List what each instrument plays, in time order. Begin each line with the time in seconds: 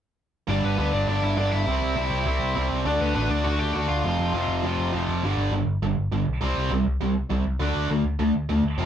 0.49 picked electric bass G1, distorted electric guitar G2 D3 G3, lead electric guitar D4 D5
0.63 picked electric bass G1, lead electric guitar B3 B4
0.78 picked electric bass D2, distorted electric guitar G2 D3 G3, lead electric guitar B3 B4
0.92 picked electric bass G1, lead electric guitar D4 D5
1.07 picked electric bass G1, distorted electric guitar G2 D3 G3, lead electric guitar D4 D5
1.22 picked electric bass G1, lead electric guitar E4 E5
1.37 picked electric bass G1, distorted electric guitar G2 D3 G3, lead electric guitar D4 D5
1.51 picked electric bass G1, lead electric guitar E4 E5
1.66 picked electric bass C2, distorted electric guitar C3 G3 C4
1.82 picked electric bass C2
1.96 picked electric bass C2, distorted electric guitar C3 G3 C4
2.11 picked electric bass C2
2.26 picked electric bass C2, distorted electric guitar C3 G3 C4
2.40 picked electric bass C2
2.55 picked electric bass C2, distorted electric guitar C3 G3 C4
2.71 picked electric bass C2
2.85 picked electric bass D2, distorted electric guitar D3 A3 D4, lead electric guitar D4 D5
3.00 picked electric bass D2, lead electric guitar B3 B4
3.14 picked electric bass A1, distorted electric guitar D3 A3 D4, lead electric guitar B3 B4
3.30 picked electric bass D2, lead electric guitar D4 D5
3.44 picked electric bass D2, distorted electric guitar D3 A3 D4, lead electric guitar F#4 F#5
3.59 picked electric bass D2, lead electric guitar G4 G5
3.74 picked electric bass D2, distorted electric guitar D3 A3 D4, lead electric guitar F#4 F#5
3.88 picked electric bass D2, lead electric guitar F4 F5
4.04 picked electric bass F1, distorted electric guitar F2 C3 F3
4.19 picked electric bass F1
4.34 picked electric bass F1, distorted electric guitar F2 C3 F3
4.48 picked electric bass F1
4.63 picked electric bass F1, distorted electric guitar F2 C3 F3
4.78 picked electric bass F1
4.93 picked electric bass F1, distorted electric guitar F2 C3 F3
5.09 picked electric bass F1
5.23 picked electric bass G1, distorted electric guitar G2 D3 G3
5.37 picked electric bass G1
5.51 picked electric bass G1, distorted electric guitar G2 D3
5.66 picked electric bass G1
5.82 picked electric bass G1, distorted electric guitar G2 D3
5.97 picked electric bass G1
6.12 picked electric bass G1, distorted electric guitar G2 D3
6.27 picked electric bass B1
6.41 picked electric bass C2, distorted electric guitar C3 G3 C4
6.56 picked electric bass C2
6.70 picked electric bass C2, distorted electric guitar C3 G3
6.86 picked electric bass C2
7.00 picked electric bass C2, distorted electric guitar C3 G3
7.29 picked electric bass C2, distorted electric guitar C3 G3
7.45 picked electric bass C2
7.60 picked electric bass D2, distorted electric guitar D3 A3 D4
7.75 picked electric bass D2
7.89 picked electric bass D2, distorted electric guitar D3 A3
8.04 picked electric bass D2
8.19 picked electric bass D2, distorted electric guitar D3 A3
8.34 picked electric bass D2
8.49 picked electric bass D2, distorted electric guitar D3 A3
8.64 picked electric bass D2
8.78 picked electric bass F1, distorted electric guitar F2 C3 F3